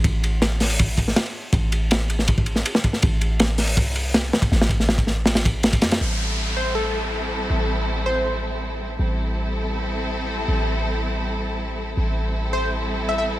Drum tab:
RD |x-x-x--xx-x-xx--|x-x-x-x-x-x-x-x-|x-x-x--xx-x-x--x|--x--x--xxx-xxxx|
HH |------o---------|----------------|------o---------|----------------|
SD |----o-o----oo---|----o--o---o-o-o|----o-o-----o-o-|oo-oo-o-oo--o-oo|
BD |o-------o-o-----|o-------oo----o-|o-------o------o|--o--o----o--o--|

RD |----------------|----------------|----------------|----------------|
HH |----------------|----------------|----------------|----------------|
SD |----------------|----------------|----------------|----------------|
BD |----------------|----------------|----------------|----------------|

RD |----------------|
HH |----------------|
SD |----------------|
BD |----------------|